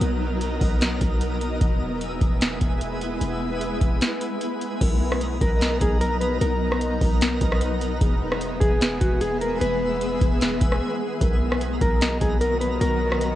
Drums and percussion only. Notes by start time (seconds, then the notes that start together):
0.01 closed hi-hat
0.41 closed hi-hat
0.61 kick, open hi-hat
0.81 snare, closed hi-hat
1.01 kick, closed hi-hat
1.21 closed hi-hat
1.41 closed hi-hat
1.61 kick, closed hi-hat
2.01 closed hi-hat
2.21 kick, closed hi-hat
2.41 snare, closed hi-hat
2.61 kick, closed hi-hat
2.81 closed hi-hat
3.01 closed hi-hat
3.21 closed hi-hat
3.61 closed hi-hat
3.81 kick, closed hi-hat
4.01 snare, closed hi-hat
4.21 closed hi-hat
4.41 closed hi-hat
4.61 closed hi-hat
4.81 kick, closed hi-hat, crash
5.12 cross-stick
5.21 closed hi-hat
5.41 kick, closed hi-hat
5.61 snare, closed hi-hat
5.81 kick, closed hi-hat
6.01 closed hi-hat
6.21 closed hi-hat
6.41 closed hi-hat
6.72 cross-stick
6.81 closed hi-hat
7.01 kick, open hi-hat
7.21 snare, closed hi-hat
7.41 kick, closed hi-hat
7.52 cross-stick
7.61 closed hi-hat
7.81 closed hi-hat
8.01 kick, closed hi-hat
8.32 cross-stick
8.41 closed hi-hat
8.61 kick, closed hi-hat
8.81 snare, closed hi-hat
9.01 kick, closed hi-hat
9.21 closed hi-hat
9.41 closed hi-hat
9.61 closed hi-hat
10.01 closed hi-hat
10.21 kick, closed hi-hat
10.41 snare, closed hi-hat
10.61 kick, closed hi-hat
10.72 cross-stick
11.21 kick, closed hi-hat
11.52 cross-stick
11.61 closed hi-hat
11.81 kick, closed hi-hat
12.01 snare, closed hi-hat
12.21 kick, closed hi-hat
12.41 closed hi-hat
12.61 closed hi-hat
12.81 closed hi-hat
13.12 cross-stick
13.21 closed hi-hat